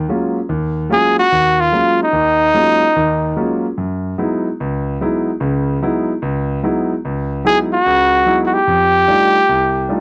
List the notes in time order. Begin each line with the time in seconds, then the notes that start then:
0.09 F#3 G#3 A#3 C#4 F4
0.49 D#2
0.89 F#3 G#3 A#3 C#4 F4 G#4
1.19 F#4
1.32 D#2
1.61 F4
1.72 F#3 G#3 A#3 C#4 F4
2.03 D#4
2.13 D#2 D#3
2.54 F#3 G#3 A#3 C#4 F4
2.96 D#2 D#3
3.36 F#3 G#3 A#3 C#4 F4
3.78 F#2
4.18 F#3 G#3 B3 D#4 E4
4.60 C#2
5.01 F#3 G#3 B3 D#4 E4
5.40 C#2 C#3
5.82 F#3 G#3 B3 D#4 E4
6.22 C#2
6.63 F#3 G#3 B3 D#4 E4
7.05 C#2
7.44 F#3 G#3 B3 D#4 E4 G#4
7.73 F#4
7.86 C#2 C#3
8.26 F#3 G#3 B3 D#4 E4
8.46 F#4
8.54 G4
8.68 F2
9.08 G3 A3 D4 D#4 F4
9.49 C2
9.89 G3 A3 D4 D#4 F4